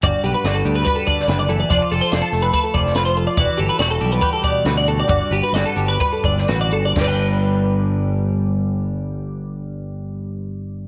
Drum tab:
CC |----------------|----------------|----------------|----------------|
HH |x-x-x-x-x-x-x-x-|x-x-x-x-x-x-x-x-|x-x-x-x-x-x-x-x-|x-x-x-x-x-x-x-x-|
SD |----o------oo---|----o------oo---|----o-------o---|----o------oo---|
BD |o-------o-o-----|o-------o-o-----|o-------o-o-----|o-------o-o-----|

CC |x---------------|----------------|
HH |----------------|----------------|
SD |o---------------|----------------|
BD |o---------------|----------------|